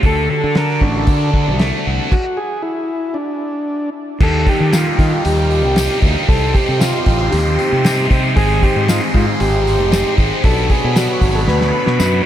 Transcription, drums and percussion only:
0.03 kick, open hi-hat
0.55 snare, open hi-hat
0.81 kick
1.07 kick, open hi-hat
1.34 kick
1.59 snare, open hi-hat
2.12 kick, crash
4.20 kick, crash
4.47 kick, open hi-hat
4.73 snare, open hi-hat, tambourine
4.99 kick, open hi-hat
5.25 open hi-hat
5.51 open hi-hat
5.76 snare, open hi-hat, tambourine
6.02 kick, open hi-hat
6.29 kick, open hi-hat
6.55 kick, open hi-hat
6.81 snare, open hi-hat, tambourine
7.06 kick, open hi-hat
7.33 open hi-hat
7.59 open hi-hat
7.85 snare, open hi-hat, tambourine
8.11 kick, open hi-hat
8.37 kick, open hi-hat
8.63 kick, open hi-hat
8.88 snare, open hi-hat, tambourine
9.14 kick, open hi-hat
9.40 open hi-hat
9.67 snare, open hi-hat
9.92 snare, open hi-hat, tambourine
10.18 kick, open hi-hat
10.44 kick, open hi-hat
10.70 kick, open hi-hat
10.96 snare, open hi-hat, tambourine
11.21 kick, open hi-hat
11.48 snare
11.61 snare
11.87 snare
12.00 snare, tambourine

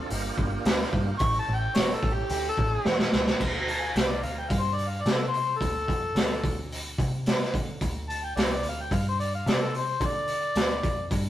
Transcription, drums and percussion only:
0.10 open hi-hat
0.38 kick
0.65 snare, open hi-hat
0.81 snare
0.93 kick
1.19 kick, open hi-hat
1.74 snare, open hi-hat
2.03 kick
2.29 open hi-hat
2.58 kick
2.85 snare
2.99 snare
3.12 snare
3.27 snare
3.40 kick, crash
3.68 open hi-hat
3.96 snare, open hi-hat
4.23 open hi-hat
4.50 kick, open hi-hat
4.78 open hi-hat
5.06 snare, open hi-hat
5.34 open hi-hat
5.61 kick, open hi-hat
5.88 kick, open hi-hat
6.16 snare, open hi-hat
6.44 kick, open hi-hat
6.72 open hi-hat
6.99 kick, open hi-hat
7.26 snare, open hi-hat
7.42 snare
7.54 kick, open hi-hat
7.81 kick, open hi-hat
8.10 open hi-hat
8.37 snare, open hi-hat
8.63 open hi-hat
8.91 kick, open hi-hat
9.20 open hi-hat
9.47 snare, open hi-hat
9.74 open hi-hat
10.01 kick, open hi-hat
10.28 open hi-hat
10.55 snare, open hi-hat
10.83 kick, open hi-hat
11.11 kick, open hi-hat

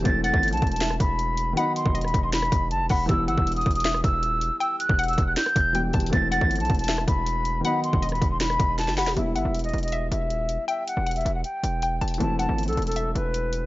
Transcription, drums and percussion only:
0.05 kick, closed hi-hat
0.24 closed hi-hat
0.34 kick
0.43 closed hi-hat
0.48 closed hi-hat
0.53 closed hi-hat
0.57 closed hi-hat
0.62 kick, closed hi-hat
0.67 closed hi-hat
0.72 closed hi-hat
0.76 closed hi-hat
0.81 snare, closed hi-hat
0.90 cross-stick
1.00 kick, closed hi-hat
1.19 closed hi-hat
1.37 closed hi-hat
1.57 closed hi-hat
1.76 closed hi-hat
1.86 kick
1.95 closed hi-hat
2.01 cross-stick, closed hi-hat
2.08 closed hi-hat
2.14 kick, closed hi-hat
2.33 snare, closed hi-hat
2.42 cross-stick
2.52 kick, closed hi-hat
2.71 closed hi-hat
2.89 kick, open hi-hat
3.09 kick, closed hi-hat
3.28 closed hi-hat
3.38 kick
3.47 closed hi-hat
3.52 closed hi-hat
3.56 closed hi-hat
3.61 closed hi-hat
3.66 kick, closed hi-hat
3.71 closed hi-hat
3.75 closed hi-hat
3.80 closed hi-hat
3.85 snare, closed hi-hat
3.94 cross-stick
4.04 kick, closed hi-hat
4.23 closed hi-hat
4.41 closed hi-hat
4.61 closed hi-hat
4.80 closed hi-hat
4.89 kick
4.99 closed hi-hat
5.04 closed hi-hat
5.08 closed hi-hat
5.13 closed hi-hat
5.18 kick, closed hi-hat
5.37 snare, closed hi-hat
5.46 cross-stick
5.56 kick, closed hi-hat
5.75 closed hi-hat
5.93 kick, closed hi-hat, open hi-hat
6.00 closed hi-hat
6.06 closed hi-hat
6.13 kick, closed hi-hat
6.32 closed hi-hat
6.41 kick
6.51 closed hi-hat
6.55 closed hi-hat
6.60 closed hi-hat
6.65 closed hi-hat
6.70 kick, closed hi-hat
6.74 closed hi-hat
6.79 closed hi-hat
6.84 closed hi-hat
6.88 snare, closed hi-hat
6.98 cross-stick
7.08 kick, closed hi-hat
7.26 closed hi-hat
7.45 closed hi-hat
7.65 closed hi-hat
7.84 closed hi-hat
7.93 kick
8.03 closed hi-hat
8.09 cross-stick, closed hi-hat
8.15 closed hi-hat
8.22 kick, closed hi-hat
8.40 snare, closed hi-hat
8.50 cross-stick
8.60 kick, closed hi-hat
8.78 snare, closed hi-hat
8.88 snare
8.97 snare, open hi-hat
9.07 snare
9.17 closed hi-hat
9.36 closed hi-hat
9.55 closed hi-hat
9.59 closed hi-hat
9.64 closed hi-hat
9.69 closed hi-hat
9.74 closed hi-hat
9.78 closed hi-hat
9.83 closed hi-hat
9.88 closed hi-hat
9.92 closed hi-hat
10.12 closed hi-hat
10.30 closed hi-hat
10.49 closed hi-hat
10.69 closed hi-hat
10.88 closed hi-hat
11.06 closed hi-hat
11.11 closed hi-hat
11.16 closed hi-hat
11.21 closed hi-hat
11.26 closed hi-hat
11.44 closed hi-hat
11.64 closed hi-hat
11.82 closed hi-hat
12.01 closed hi-hat
12.08 closed hi-hat
12.14 closed hi-hat
12.20 closed hi-hat
12.39 closed hi-hat
12.58 closed hi-hat
12.63 closed hi-hat
12.68 closed hi-hat
12.73 closed hi-hat
12.77 closed hi-hat
12.82 closed hi-hat
12.87 closed hi-hat
12.92 closed hi-hat
12.96 closed hi-hat
13.16 closed hi-hat
13.34 closed hi-hat
13.53 closed hi-hat

